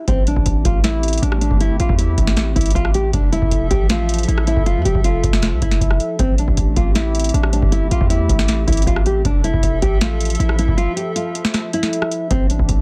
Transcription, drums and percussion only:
0.08 kick, closed hi-hat
0.27 closed hi-hat
0.36 kick
0.46 closed hi-hat
0.65 kick, closed hi-hat
0.84 snare, closed hi-hat
1.03 closed hi-hat
1.08 closed hi-hat
1.13 closed hi-hat
1.18 closed hi-hat
1.23 closed hi-hat
1.32 cross-stick
1.41 closed hi-hat
1.51 kick
1.61 closed hi-hat
1.80 closed hi-hat
1.89 kick
1.99 closed hi-hat
2.18 kick, closed hi-hat
2.27 snare
2.37 snare, closed hi-hat
2.56 kick, closed hi-hat
2.61 closed hi-hat
2.66 closed hi-hat
2.70 closed hi-hat
2.75 kick, closed hi-hat
2.85 cross-stick
2.94 closed hi-hat
3.13 kick, closed hi-hat
3.33 closed hi-hat
3.42 kick
3.51 closed hi-hat
3.71 kick, closed hi-hat
3.89 snare, closed hi-hat
4.09 closed hi-hat
4.14 closed hi-hat
4.18 closed hi-hat
4.23 closed hi-hat
4.29 closed hi-hat
4.38 cross-stick
4.47 closed hi-hat
4.57 kick
4.66 closed hi-hat
4.85 closed hi-hat
4.95 kick
5.04 closed hi-hat
5.24 kick, closed hi-hat
5.33 snare
5.42 cross-stick, snare, closed hi-hat
5.62 kick, closed hi-hat
5.71 snare, closed hi-hat
5.81 kick, closed hi-hat
5.91 cross-stick
6.00 closed hi-hat
6.19 kick, closed hi-hat
6.38 closed hi-hat
6.48 kick
6.57 closed hi-hat
6.76 kick, closed hi-hat
6.95 snare, closed hi-hat
7.15 closed hi-hat
7.20 closed hi-hat
7.24 closed hi-hat
7.29 closed hi-hat
7.34 closed hi-hat
7.43 cross-stick
7.53 closed hi-hat
7.62 kick
7.72 closed hi-hat
7.91 closed hi-hat
8.01 kick
8.10 closed hi-hat
8.29 kick, closed hi-hat
8.39 snare
8.48 snare, closed hi-hat
8.68 kick, closed hi-hat
8.72 closed hi-hat
8.77 closed hi-hat
8.82 closed hi-hat
8.87 kick, closed hi-hat
8.96 cross-stick
9.06 closed hi-hat
9.25 kick, closed hi-hat
9.44 closed hi-hat
9.54 kick
9.63 closed hi-hat
9.82 kick, closed hi-hat
10.01 snare, closed hi-hat
10.20 closed hi-hat
10.25 closed hi-hat
10.30 closed hi-hat
10.35 closed hi-hat
10.40 closed hi-hat
10.49 cross-stick
10.59 closed hi-hat
10.68 kick
10.78 closed hi-hat
10.97 closed hi-hat
11.16 closed hi-hat
11.35 closed hi-hat
11.45 snare
11.54 cross-stick, snare, closed hi-hat
11.73 closed hi-hat
11.83 snare, closed hi-hat
11.93 closed hi-hat
12.02 cross-stick
12.11 closed hi-hat
12.31 kick, closed hi-hat
12.50 closed hi-hat
12.59 kick
12.69 closed hi-hat

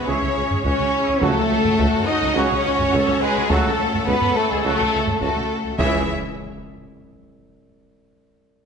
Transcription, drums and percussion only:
0.51 taiko low
0.65 taiko
1.22 taiko
1.65 taiko low
1.79 taiko
1.94 taiko low
2.79 taiko low
2.93 taiko
3.50 taiko
3.93 taiko low
4.07 taiko
4.22 taiko low
5.07 taiko low
5.21 taiko
5.79 taiko

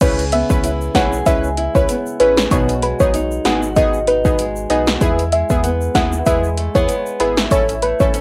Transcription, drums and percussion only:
0.01 kick, closed hi-hat, crash, shaker
0.19 closed hi-hat, shaker
0.32 closed hi-hat
0.50 kick, shaker
0.64 closed hi-hat, shaker
0.81 shaker
0.95 kick, snare, closed hi-hat, shaker
1.13 shaker
1.26 kick, closed hi-hat, shaker
1.44 shaker
1.57 closed hi-hat
1.75 kick, shaker
1.89 closed hi-hat, shaker
2.06 shaker
2.20 closed hi-hat
2.37 snare, shaker
2.51 kick, closed hi-hat, shaker
2.69 closed hi-hat, shaker
2.82 closed hi-hat
3.00 kick, shaker
3.14 closed hi-hat, shaker
3.31 shaker
3.45 snare, closed hi-hat, shaker
3.63 shaker
3.76 kick, closed hi-hat, shaker
3.94 shaker
4.07 closed hi-hat
4.25 kick, shaker
4.39 closed hi-hat, shaker
4.56 shaker
4.70 closed hi-hat
4.87 snare, shaker
5.01 kick, closed hi-hat, shaker
5.19 closed hi-hat, shaker
5.32 closed hi-hat
5.50 kick, shaker
5.64 closed hi-hat, shaker
5.81 shaker
5.95 kick, snare, closed hi-hat, shaker
6.12 shaker
6.26 kick, closed hi-hat, shaker
6.44 shaker
6.57 closed hi-hat
6.75 kick, shaker
6.89 closed hi-hat, shaker
7.06 shaker
7.20 closed hi-hat
7.37 snare, shaker
7.51 kick, closed hi-hat, shaker
7.69 closed hi-hat, shaker
7.82 closed hi-hat
8.00 kick, shaker
8.14 closed hi-hat, shaker

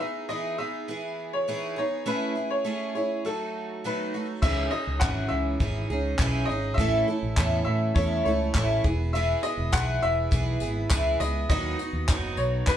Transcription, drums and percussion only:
4.42 kick, crash
5.02 kick, clap
5.60 kick
6.19 kick, clap
6.78 kick
7.37 kick, clap
7.96 kick
8.55 kick, clap
8.84 kick
9.43 tambourine
9.72 kick, clap, tambourine
10.32 kick, tambourine
10.60 tambourine
10.90 kick, clap, tambourine
11.21 tambourine
11.50 kick
11.79 tambourine
12.08 kick, clap, tambourine
12.37 tambourine
12.67 kick, clap, tambourine

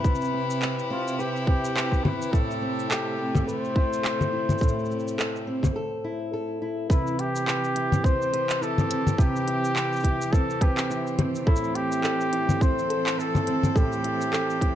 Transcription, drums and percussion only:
0.04 kick, shaker
0.15 shaker
0.21 shaker
0.24 shaker
0.50 shaker
0.62 clap, shaker
0.79 shaker
1.08 shaker
1.20 shaker
1.36 shaker
1.47 kick
1.65 shaker
1.77 clap, shaker
1.92 kick, shaker
2.05 low conga
2.22 shaker
2.33 kick, shaker
2.51 shaker
2.79 shaker
2.91 clap, shaker
3.35 kick, low conga, shaker
3.49 shaker
3.65 shaker
3.76 kick
3.93 shaker
4.05 clap, shaker
4.21 low conga, shaker
4.49 low conga, shaker
4.58 kick, shaker
4.62 shaker
4.68 shaker
4.79 shaker
4.85 shaker
4.91 shaker
5.00 shaker
5.08 shaker
5.19 clap, shaker
5.36 shaker
5.63 kick, low conga, shaker
6.90 kick, shaker
7.07 shaker
7.19 closed hi-hat
7.36 shaker
7.48 clap, shaker
7.64 shaker
7.76 closed hi-hat
7.92 low conga, shaker
8.04 kick, shaker
8.22 shaker
8.34 closed hi-hat
8.50 clap, shaker
8.63 shaker
8.78 low conga, shaker
8.91 closed hi-hat
9.07 low conga, shaker
9.18 kick, shaker
9.36 shaker
9.48 closed hi-hat
9.65 shaker
9.76 clap, shaker
9.93 shaker
9.96 shaker
10.00 shaker
10.03 kick, closed hi-hat, shaker
10.22 shaker
10.33 kick, shaker
10.50 shaker
10.61 kick, closed hi-hat
10.77 clap, shaker
10.91 shaker
11.07 shaker
11.19 closed hi-hat, low conga
11.35 shaker
11.47 kick
11.56 shaker
11.64 shaker
11.75 closed hi-hat
11.92 shaker
12.04 clap, shaker
12.21 shaker
12.33 closed hi-hat
12.49 low conga, shaker
12.61 kick, shaker
12.79 shaker
12.90 closed hi-hat
13.06 clap, shaker
13.20 shaker
13.35 low conga, shaker
13.47 closed hi-hat
13.63 low conga, shaker
13.76 kick, shaker
13.92 shaker
14.04 closed hi-hat
14.21 shaker
14.33 clap, shaker
14.50 shaker
14.61 kick, closed hi-hat

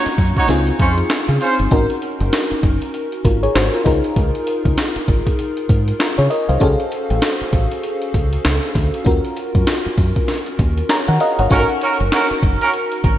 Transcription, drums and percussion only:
0.06 closed hi-hat
0.18 kick, open hi-hat
0.36 kick, closed hi-hat
0.48 snare, closed hi-hat, tambourine
0.67 closed hi-hat
0.79 kick, closed hi-hat, tambourine
0.98 closed hi-hat
1.10 snare, clap, closed hi-hat, tambourine
1.28 closed hi-hat
1.41 open hi-hat, tambourine
1.59 closed hi-hat
1.71 kick, closed hi-hat, tambourine
1.90 closed hi-hat
2.02 closed hi-hat, tambourine
2.20 closed hi-hat
2.33 snare, clap, closed hi-hat, tambourine
2.51 closed hi-hat
2.63 kick, closed hi-hat
2.82 closed hi-hat
2.94 closed hi-hat, tambourine
3.12 closed hi-hat
3.25 kick, closed hi-hat, tambourine
3.43 closed hi-hat
3.55 snare, clap, closed hi-hat, tambourine
3.74 closed hi-hat
3.86 kick, open hi-hat, tambourine
4.04 closed hi-hat
4.16 kick, closed hi-hat, tambourine
4.35 closed hi-hat
4.47 closed hi-hat, tambourine
4.65 kick, closed hi-hat
4.78 snare, clap, closed hi-hat, tambourine
4.96 closed hi-hat
5.08 kick, closed hi-hat
5.27 kick, closed hi-hat
5.39 closed hi-hat, tambourine
5.57 closed hi-hat
5.69 kick, closed hi-hat, tambourine
5.88 closed hi-hat
6.00 snare, clap, closed hi-hat, tambourine
6.19 closed hi-hat
6.31 open hi-hat, tambourine
6.49 closed hi-hat
6.61 kick, closed hi-hat, tambourine
6.80 closed hi-hat
6.92 closed hi-hat, tambourine
7.10 closed hi-hat
7.22 snare, clap, closed hi-hat, tambourine
7.41 closed hi-hat
7.53 kick, closed hi-hat
7.71 closed hi-hat
7.83 closed hi-hat, tambourine
8.02 closed hi-hat
8.14 kick, closed hi-hat, tambourine
8.33 closed hi-hat
8.45 snare, clap, closed hi-hat, tambourine
8.63 closed hi-hat
8.75 kick, open hi-hat, tambourine
8.94 closed hi-hat
9.06 kick, closed hi-hat, tambourine
9.25 closed hi-hat
9.37 closed hi-hat, tambourine
9.55 kick, closed hi-hat
9.67 snare, clap, closed hi-hat, tambourine
9.85 closed hi-hat
9.98 kick, open hi-hat
10.16 kick, closed hi-hat
10.28 snare, closed hi-hat, tambourine
10.46 closed hi-hat
10.59 kick, closed hi-hat, tambourine
10.77 closed hi-hat
10.89 snare, clap, closed hi-hat, tambourine
11.08 closed hi-hat
11.20 open hi-hat, tambourine
11.39 closed hi-hat
11.51 kick, closed hi-hat, tambourine
11.69 closed hi-hat
11.81 closed hi-hat, tambourine
12.00 closed hi-hat
12.12 snare, clap, closed hi-hat, tambourine
12.31 closed hi-hat
12.43 kick, closed hi-hat
12.61 closed hi-hat
12.73 closed hi-hat, tambourine
12.92 closed hi-hat
13.04 kick, closed hi-hat, tambourine

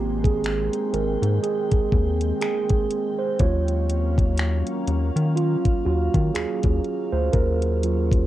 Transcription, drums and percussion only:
0.24 kick, closed hi-hat
0.44 finger snap, closed hi-hat
0.73 closed hi-hat
0.94 closed hi-hat
1.23 closed hi-hat
1.44 closed hi-hat
1.71 kick, closed hi-hat
1.92 kick
2.21 closed hi-hat
2.41 finger snap, closed hi-hat
2.70 kick, closed hi-hat
2.91 closed hi-hat
3.40 kick, closed hi-hat
3.68 closed hi-hat
3.90 closed hi-hat
4.18 kick, closed hi-hat
4.37 finger snap, closed hi-hat
4.67 closed hi-hat
4.88 closed hi-hat
5.17 closed hi-hat
5.37 closed hi-hat
5.65 kick, closed hi-hat
6.14 kick, closed hi-hat
6.35 finger snap, closed hi-hat
6.63 kick, closed hi-hat
6.85 closed hi-hat
7.33 kick, closed hi-hat
7.62 closed hi-hat
7.83 closed hi-hat
8.11 kick, closed hi-hat

